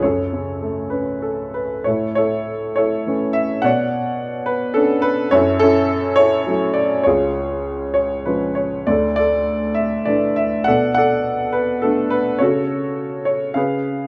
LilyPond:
<<
  \new Staff \with { instrumentName = "Upright piano" } { \time 3/4 \key fis \minor \tempo 4 = 102 << { cis''4. b'8 a'8 b'8 | cis''8 cis''4 cis''4 e''8 | fis''4. b'8 a'8 b'8 | cis''8 a'4 cis''4 d''8 |
cis''4. cis''8 b'8 cis''8 | d''8 d''4 e''8 d''8 e''8 | fis''8 fis''4 b'8 a'8 b'8 | cis''4. cis''8 eis''4 | } \\ { a'2~ a'8 r8 | <e' a'>8 <e' a'>4 <e' a'>4. | <cis'' d''>4. r4. | <e' a'>8 <cis' e'>4 <e' a'>4. |
<eis' gis'>4. r4. | a'8 a'4. r4 | <a' d''>8 <a' d''>4. r4 | <fis' a'>4. r8 <gis' b'>4 | } >> }
  \new Staff \with { instrumentName = "Upright piano" } { \clef bass \time 3/4 \key fis \minor fis,8 cis8 a8 cis'4. | a,2 <e a cis'>4 | b,2 <b cis' d'>4 | fis,2 <fis a e'>4 |
cis,2 <eis gis cis'>4 | d,2 <e a d'>4 | b,2 <a b d'>4 | cis2 cis4 | }
>>